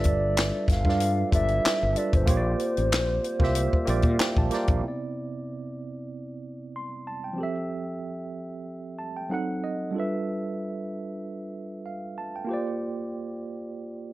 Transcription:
0.00 0.50 G1 medium
0.00 0.61 G3 loud
0.00 0.62 D4 medium
0.00 0.62 F4 medium
0.00 0.63 A4 medium
0.00 0.63 B4 medium
0.00 0.67 E5 loud
0.00 closed hi-hat medium
0.05 0.66 D5 loud
0.05 kick medium
0.37 snare loud
0.37 clap medium
0.37 closed hi-hat medium
0.68 0.83 G1 medium
0.68 1.30 F5 loud
0.68 kick medium
0.68 snare soft
0.68 closed hi-hat medium
0.84 1.22 G2 medium
0.84 1.23 G3 medium
0.84 1.23 D4 medium
0.84 1.24 F4 medium
0.84 1.24 A4 medium
0.84 1.25 B4 medium
0.84 kick medium
0.89 1.25 D5 medium
0.89 snare soft
1.00 closed hi-hat medium
1.31 1.58 G1 medium
1.31 1.84 G3 medium
1.31 1.84 D4 medium
1.31 1.85 F4 medium
1.31 1.85 A4 medium
1.31 1.86 B4 medium
1.31 1.99 E5 loud
1.31 kick loud
1.31 closed hi-hat medium
1.36 1.86 D5 medium
1.48 closed hi-hat soft
1.65 muted fretless electric bass stroke soft
1.65 snare loud
1.65 clap medium
1.65 closed hi-hat medium
1.83 1.94 G1 medium
1.95 2.21 G3 medium
1.95 2.22 D4 medium
1.95 2.22 F4 medium
1.95 2.23 A4 medium
1.95 2.23 B4 medium
1.95 2.17 D5 loud
1.95 closed hi-hat medium
1.99 2.24 E5 medium
2.13 2.25 G1 medium
2.13 4.52 C5 loud
2.13 kick medium
2.13 closed hi-hat soft
2.26 2.53 A#1 medium
2.26 3.16 A#3 medium
2.26 3.17 F4 medium
2.26 3.18 G4 medium
2.26 3.18 C5 medium
2.26 kick loud
2.26 closed hi-hat medium
2.31 2.37 C#5 medium
2.37 3.22 D5 loud
2.59 closed hi-hat medium
2.77 2.92 A1 medium
2.77 closed hi-hat soft
2.92 3.17 A#1 medium
2.92 snare loud
2.92 clap medium
2.92 closed hi-hat medium
3.24 closed hi-hat medium
3.39 3.66 C2 medium
3.39 3.78 A#3 medium
3.39 3.78 F4 medium
3.39 3.79 G4 medium
3.39 3.79 C5 medium
3.39 kick medium
3.43 3.80 E5 medium
3.43 snare soft
3.55 closed hi-hat medium
3.73 kick medium
3.85 4.02 A#1 medium
3.85 4.39 A#3 medium
3.85 4.39 F4 medium
3.85 4.40 G4 medium
3.85 4.40 C5 medium
3.85 4.17 F5 medium
3.85 closed hi-hat medium
3.90 4.41 D5 medium
4.02 4.16 A#2 medium
4.02 kick medium
4.02 closed hi-hat soft
4.19 4.36 G5 medium
4.19 muted fretless electric bass stroke soft
4.19 snare loud
4.19 clap medium
4.19 closed hi-hat medium
4.37 4.49 A#1 medium
4.37 4.51 A5 medium
4.37 kick medium
4.50 4.77 A#3 medium
4.50 4.78 F4 medium
4.50 4.78 G4 medium
4.50 4.79 C5 medium
4.50 4.82 A#5 medium
4.50 snare soft
4.50 closed hi-hat medium
4.54 4.79 D5 medium
4.67 4.81 A#1 medium
4.67 kick medium
4.67 closed hi-hat soft
4.79 7.33 C3 medium
4.79 7.34 C4 medium
4.83 7.36 B3 medium
4.83 7.35 E4 medium
4.88 7.37 D5 medium
6.76 7.06 C6 soft
7.07 7.24 A5 medium
7.24 7.55 G5 soft
7.33 9.24 F3 medium
7.33 9.25 C4 medium
7.38 9.26 G4 medium
7.38 9.27 A4 medium
7.43 9.29 E5 medium
8.99 9.15 A5 medium
9.17 9.30 G5 medium
9.29 9.94 F#3 medium
9.29 9.94 C4 medium
9.29 9.95 D#4 medium
9.29 9.95 A4 medium
9.29 9.33 F#5 medium
9.34 9.96 F#5 medium
9.64 9.93 D#5 medium
9.91 12.44 G3 medium
9.91 12.45 D4 medium
9.91 12.45 F4 medium
9.96 12.46 A4 medium
9.96 12.48 B4 medium
9.96 11.85 E5 medium
11.86 12.16 F5 medium
12.18 12.34 A5 medium
12.36 12.66 G5 medium
12.45 14.13 A#3 medium
12.45 14.13 F4 medium
12.49 14.13 G4 medium
12.49 14.13 C5 medium
12.53 14.13 D5 medium

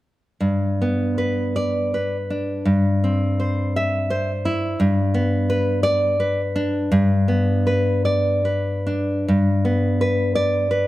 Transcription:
0.40 2.62 G2 soft
0.82 1.95 B3 soft
1.18 1.93 B4 soft
1.56 2.16 D5 soft
1.94 2.67 B4 soft
2.30 2.67 D4 soft
2.65 4.73 G2 soft
3.04 4.09 C4 soft
3.40 3.76 C5 soft
3.76 4.31 E5 soft
4.10 4.79 C5 soft
4.45 4.79 E4 soft
4.80 6.89 G2 soft
5.14 6.19 B3 soft
5.50 5.83 B4 soft
5.83 6.40 D5 medium
6.20 7.28 B4 soft
6.56 7.69 D4 soft
6.92 9.26 G2 medium
7.28 8.45 B3 soft
7.67 8.05 B4 soft
8.05 9.29 D5 soft
8.45 9.28 B4 soft
8.87 9.28 D4 soft
9.28 10.87 G2 soft
9.65 10.70 B3 soft
10.01 10.35 B4 soft
10.35 10.87 D5 soft
10.71 10.87 B4 soft

